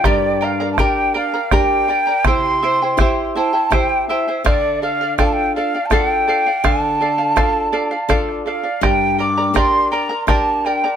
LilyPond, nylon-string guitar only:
\new Staff \with { instrumentName = "Nylon-string guitar" } { \time 3/4 \key g \dorian \tempo 4 = 82 g,4 <d' g' bes'>4 <d' g' bes'>4 | c4 <e' g' c''>4 <e' g' c''>4 | d4 <d' f' a'>4 <d' f' a'>4 | d4 <d' f' a'>4 <d' f' a'>4 |
g,4 <d' g' bes'>4 <d' g' bes'>4 | }